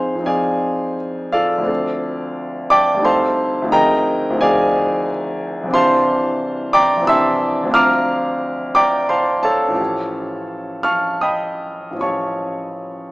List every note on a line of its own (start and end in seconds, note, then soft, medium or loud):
0.00 0.14 F2 medium
0.00 0.16 F3 soft
0.00 0.19 C4 soft
0.00 0.21 D#4 soft
0.00 0.25 G#4 soft
0.00 0.24 C5 medium
0.00 0.24 F5 medium
0.00 0.24 G#5 medium
0.00 0.27 C6 medium
0.15 1.59 F2 medium
0.15 1.59 F3 soft
0.20 1.61 C4 soft
0.20 1.63 D#4 soft
0.26 0.95 G#4 medium
0.26 0.95 D5 medium
0.26 0.95 F5 medium
0.26 0.98 G#5 medium
1.32 2.67 F4 medium
1.32 1.66 A4 medium
1.32 2.67 D5 medium
1.32 2.70 F5 medium
1.58 2.93 D2 medium
1.58 2.98 F3 soft
1.63 2.97 C4 soft
1.63 3.00 D4 soft
1.67 3.01 A4 soft
2.70 3.04 D5 medium
2.70 3.04 G5 medium
2.70 3.04 A5 medium
2.70 3.05 D6 loud
2.94 3.60 D2 medium
2.94 3.67 G3 soft
2.99 3.65 C4 soft
2.99 3.67 D#4 soft
3.04 3.71 A4 soft
3.04 3.70 C5 medium
3.04 3.70 F5 medium
3.04 3.70 A5 medium
3.04 3.73 C6 loud
3.62 4.29 D2 medium
3.62 4.31 F3 medium
3.66 4.33 C4 soft
3.66 4.36 D#4 medium
3.71 4.37 G#4 soft
3.71 4.37 A#4 medium
3.71 4.37 D#5 medium
3.71 4.36 G5 medium
3.71 4.40 A#5 loud
4.30 5.66 D2 medium
4.30 5.67 F3 medium
4.35 5.67 C4 medium
4.35 5.69 D#4 medium
4.41 5.05 G#4 medium
4.41 5.05 D5 medium
4.41 5.05 F5 medium
4.41 5.08 G#5 medium
5.63 6.95 C2 medium
5.63 6.98 E3 medium
5.68 7.00 C4 medium
5.68 7.02 D4 medium
5.73 7.03 G4 medium
5.73 6.71 C5 medium
5.73 6.71 F5 medium
5.73 6.71 A5 medium
5.73 6.74 C6 loud
6.73 7.06 D5 medium
6.73 7.05 G5 medium
6.73 7.05 A#5 medium
6.73 7.07 D6 loud
6.97 7.67 C2 medium
6.97 7.68 E3 medium
7.02 7.67 C4 soft
7.02 7.69 D4 soft
7.06 7.72 G4 soft
7.06 7.71 E5 medium
7.06 7.71 A5 medium
7.06 7.71 C6 medium
7.06 7.74 E6 loud
7.63 9.70 D2 medium
7.63 9.69 F3 medium
7.68 9.72 C4 medium
7.68 9.73 D4 medium
7.73 9.73 F4 medium
7.73 8.72 F5 medium
7.73 8.72 A#5 medium
7.73 8.72 D6 medium
7.73 8.76 F6 loud
8.75 9.08 D5 medium
8.75 9.08 G5 medium
8.75 9.08 A#5 medium
8.75 9.10 D6 loud
9.09 9.42 C5 medium
9.09 9.42 F5 medium
9.09 9.41 A5 medium
9.09 9.44 C6 medium
9.43 10.81 A4 medium
9.43 10.80 C#5 medium
9.43 10.80 F5 medium
9.43 10.83 A5 medium
9.68 11.89 A1 medium
9.68 11.91 F3 soft
9.73 11.94 C#4 soft
9.73 11.95 F4 soft
9.77 11.96 G4 soft
10.83 11.19 F5 medium
10.83 11.19 A5 medium
10.83 11.19 C#6 medium
10.83 11.22 F6 medium
11.21 11.97 D#5 medium
11.21 11.97 G5 medium
11.21 11.98 B5 medium
11.21 12.01 D#6 medium
11.91 13.12 A1 soft
11.91 13.12 F3 soft
11.95 13.12 C#4 soft
11.95 13.12 F4 soft
12.00 13.12 G4 soft
12.00 13.12 C#5 medium
12.00 13.12 F5 medium
12.00 13.12 A5 medium
12.00 13.12 C#6 medium